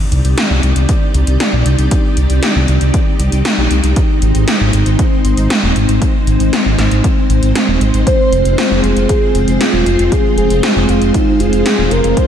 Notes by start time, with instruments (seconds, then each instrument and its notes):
Already playing: string machine C4 D#4 G4 D5
0.12 detuned saw bass C2, closed hi-hat
0.25 detuned saw bass C2, closed hi-hat
0.38 snare, closed hi-hat
0.50 detuned saw bass C2
0.63 detuned saw bass C2, closed hi-hat
0.76 detuned saw bass C2, closed hi-hat
0.89 kick, closed hi-hat
1.14 detuned saw bass C2, closed hi-hat
1.27 detuned saw bass C2, closed hi-hat
1.40 snare, closed hi-hat
1.53 detuned saw bass A#1
1.66 detuned saw bass C2, closed hi-hat
1.79 detuned saw bass C2, closed hi-hat
1.91 kick, closed hi-hat
2.17 detuned saw bass C2, closed hi-hat
2.30 detuned saw bass C2, closed hi-hat
2.43 snare, closed hi-hat
2.56 detuned saw bass C2
2.68 detuned saw bass C2, closed hi-hat
2.81 detuned saw bass C2, closed hi-hat
2.94 kick, closed hi-hat
3.20 detuned saw bass C2, closed hi-hat
3.32 detuned saw bass C2, closed hi-hat
3.45 snare, closed hi-hat
3.58 detuned saw bass A#1
3.71 detuned saw bass C2, closed hi-hat
3.84 detuned saw bass C2, closed hi-hat
3.96 string machine G#3 C5, kick, closed hi-hat
4.22 detuned saw bass G#1, closed hi-hat
4.35 detuned saw bass G#1, closed hi-hat
4.48 snare, closed hi-hat
4.61 detuned saw bass G#1
4.73 detuned saw bass G#1, closed hi-hat
4.86 detuned saw bass G#1, closed hi-hat
4.99 kick, closed hi-hat
5.25 detuned saw bass G#1, closed hi-hat
5.37 detuned saw bass G#1, closed hi-hat
5.50 snare, closed hi-hat
5.63 detuned saw bass D#1
5.76 detuned saw bass G#1, closed hi-hat
5.89 detuned saw bass G#1, closed hi-hat
6.02 kick, closed hi-hat
6.27 detuned saw bass G#1, closed hi-hat
6.40 detuned saw bass G#1, closed hi-hat
6.53 snare, closed hi-hat
6.66 detuned saw bass G#1
6.79 detuned saw bass G#1, snare, closed hi-hat
6.91 detuned saw bass G#1, closed hi-hat
7.04 kick, closed hi-hat
7.30 detuned saw bass G#1, closed hi-hat
7.43 detuned saw bass G#1, closed hi-hat
7.55 snare, closed hi-hat
7.68 detuned saw bass D#1
7.81 detuned saw bass G#1, closed hi-hat
7.94 detuned saw bass G#1, closed hi-hat
8.07 string machine F4, soft synth lead C5, kick, closed hi-hat
8.32 detuned saw bass F1, closed hi-hat
8.45 detuned saw bass F1, closed hi-hat
8.58 soft synth lead G#4, snare, closed hi-hat
8.71 detuned saw bass F1
8.84 detuned saw bass F1, closed hi-hat
8.96 detuned saw bass F1, closed hi-hat
9.09 soft synth lead G#4, kick, closed hi-hat
9.35 detuned saw bass F1, closed hi-hat
9.48 detuned saw bass F1, closed hi-hat
9.61 soft synth lead F4, snare, closed hi-hat
9.73 detuned saw bass D#1
9.86 detuned saw bass F1, closed hi-hat
9.99 detuned saw bass F1, closed hi-hat
10.12 soft synth lead G#4, kick, closed hi-hat
10.37 detuned saw bass F1, soft synth lead G#4, closed hi-hat
10.50 detuned saw bass F1, closed hi-hat
10.63 snare, closed hi-hat
10.76 detuned saw bass F1
10.89 detuned saw bass F1, soft synth lead F4, closed hi-hat
11.02 detuned saw bass F1, closed hi-hat
11.14 soft synth lead D#4, kick, closed hi-hat
11.40 detuned saw bass F1, soft synth lead G#4, closed hi-hat
11.53 detuned saw bass F1, closed hi-hat
11.66 snare, closed hi-hat
11.79 detuned saw bass D#1
11.91 detuned saw bass F1, soft synth lead A#4, closed hi-hat
12.04 detuned saw bass F1, closed hi-hat
12.17 soft synth lead C5, kick, closed hi-hat